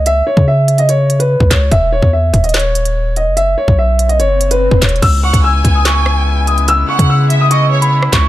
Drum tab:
CC |------------------------------------------------------------------------------------------------|------------------------------------------------------------------------------------------------|------------------------------------------------------------------------------------------------|x-----------------------------------------------------------------------------------------------|
HH |x-----------------------------------x-----x-----x-----------x-----x-----------------x-----------|x-----------------------------------x-----x--x--x--x--------x-----x-----------------x-----------|x-----------------------------------x-----x-----x-----------x-----x-----------------x---x---x---|x-----------------x-----------------x-----------x-----------------------------------x-----x-----|
CP |------------------------------------------------------------------------------------x-----------|------------------------------------------------x-----------------------------------------------|------------------------------------------------------------------------------------x-----------|------------------------------------------------x-----------------------------------------------|
SD |------------------------------------------------------------------------------------o-----------|------------------------------------------------o-----------------------------------------------|------------------------------------------------------------------------------------o-----------|------------------------------------------------o-----------r-----------------------------------|
BD |------------------o-----------------------------------------------------------o-----o-----------|o-----------------o-----------------o-----------------------------------------------------------|------------------o-----------------------------------------------------------o-----o-----------|o-----------------o-----------------o-----------------------------------------------------------|

CC |------------------------------------------------------------------------------------------------|
HH |x-----------------x-----------------x-----------x-----------------x-----------------x-----------|
CP |------------------------------------------------------------------------------------x-----------|
SD |------------------------------------------------------------------------------r-----o-----------|
BD |------------------o-----------------------------------------------------------------o-----------|